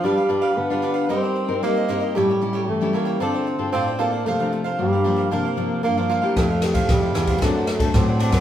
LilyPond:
<<
  \new Staff \with { instrumentName = "Cavaquinho" } { \time 4/4 \key c \mixolydian \tempo 4 = 114 <d' g' b' f''>16 <g' b' f''>16 r16 <g' b' f''>8 <g' b' f''>16 <d' g' b' f''>16 <g' b' f''>16 <ees' g' c'' ees''>16 <g' c'' ees''>16 r8 <ees' g' c'' ees''>16 <g' c'' ees''>16 <ees' g' c'' ees''>16 <g' c'' ees''>16 | <g' a' cis'' g''>16 <a' cis'' g''>16 r16 <a' cis'' g''>8 <a' cis'' g''>16 <g' a' cis'' g''>16 <a' cis'' g''>16 <f' a' c'' d''>16 <a' c'' d''>16 r8 <f' a' c'' d''>16 <a' c'' d''>16 <f' a' c'' d''>16 <a' c'' d''>16 | <f' bes' c'' f''>16 <bes' c'' f''>16 r16 <bes' c'' f''>8 <bes' c'' f''>16 <f' bes' c'' f''>16 <bes' c'' f''>16 <f' bes' c'' f''>16 <bes' c'' f''>16 r8 <f' bes' c'' f''>16 <bes' c'' f''>16 <f' bes' c'' f''>16 <bes' c'' f''>16 | <e' a' c'' f''>16 <a' c'' f''>16 r16 <a' c'' f''>8 <a' c'' f''>16 <e' a' c'' f''>16 <a' c'' f''>16 <d' c'' d'' fis''>16 <c'' d'' fis''>16 r8 <d' c'' d'' fis''>16 <c'' d'' fis''>16 <d' c'' d'' fis''>16 <c'' d'' fis''>16 | }
  \new Staff \with { instrumentName = "Nylon-string guitar" } { \time 4/4 \key c \mixolydian << { <d' f' b'>16 r16 <d' f' b'>8 r16 <d' f' b'>8. <c' ees' bes'>8. <c' ees' bes'>8. <c' ees' bes'>8 | <g cis' e'>16 r16 <g cis' e'>8. <g cis' e'>8. <c' f' a'>8. <c' f' a'>8. <c' f' a'>16 r16 | <f bes d'>16 <f d'>8. <f bes d'>16 r16 <f bes d'>8 <f bes d'>16 r16 <f bes d'>8. <f bes d'>8 <a e' g'>16~ | <a e' g'>16 r16 <a e' g'>8. <a e' g'>8. <c' d' a'>8 r16 <c' d' a'>8. <c' d' a'>16 r16 | } \\ { g4 d4 g4 g4 | a,4 e4 d4 a,4 | c4 g,4 c4 g,4 | f4 c4 fis4 fis4 | } >> }
  \new Staff \with { instrumentName = "Tenor saxophone" } { \time 4/4 \key c \mixolydian g4 b4 c'4 bes4 | g4 a8 bes8 c'4 c'8 bes8 | a4 g4 bes4 bes4 | a4 g4 a4 c'4 | }
  \new Staff \with { instrumentName = "Nylon-string guitar" } { \clef bass \time 4/4 \key c \mixolydian r1 | r1 | r1 | f,4 f,8 e,8 fis,4 a,8. fis,16 | }
  \new DrumStaff \with { instrumentName = "Drums" } \drummode { \time 4/4 r4 r4 r4 r4 | r4 r4 r4 r4 | r4 r4 r4 r4 | <bd cymr ss>8 <cymr ss>16 <bd cymr>16 <bd cymr ss>8 <cymr ss>16 <bd cymr>16 <bd cymr ss>8 <cymr ss>16 <bd cymr>16 <bd cymr ss>8 cymr16 <bd cymr ss>16 | }
>>